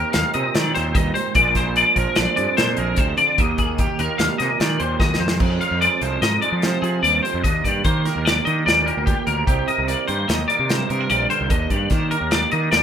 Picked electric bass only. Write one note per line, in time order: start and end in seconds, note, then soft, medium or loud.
0.15 0.23 D#2 medium
0.35 0.43 C3 medium
0.55 0.71 D#3 medium
0.77 0.92 D#2 medium
0.95 1.11 D#2 medium
1.36 1.83 A#1 medium
1.97 2.05 A#1 medium
2.18 2.26 A#1 loud
2.38 2.46 G2 medium
2.59 2.74 A#2 medium
2.78 2.94 A#1 medium
2.98 3.14 D2 medium
3.39 3.85 D#2 medium
4.00 4.07 D#2 medium
4.19 4.27 D#2 medium
4.40 4.48 C3 medium
4.60 4.76 D#3 medium
4.80 4.96 D#2 medium
5.00 5.19 D#2 medium
5.20 5.39 F2 medium
5.41 5.56 F2 medium
5.71 5.87 F2 medium
6.02 6.17 C2 medium
6.22 6.38 G#2 medium
6.52 6.76 F3 medium
6.82 6.98 F3 medium
7.03 7.19 D#2 medium
7.34 7.42 F2 medium
7.45 7.60 D#2 medium
7.65 7.81 G2 medium
7.85 8.09 D#3 medium
8.16 8.39 D#2 medium
8.47 8.62 D#3 medium
8.67 8.90 D#2 medium
8.97 9.13 D2 medium
9.27 9.43 D2 medium
9.47 9.63 C2 loud
9.78 9.94 C2 medium
10.09 10.24 G2 medium
10.29 10.45 D#2 medium
10.59 10.83 C3 medium
10.90 11.06 C3 medium
11.10 11.26 A#1 medium
11.41 11.48 C2 medium
11.51 11.66 D#2 medium
11.71 11.86 G2 medium
11.92 12.15 D#3 medium
12.21 12.45 D#2 medium
12.53 12.68 D#3 medium
12.72 12.83 D#2 medium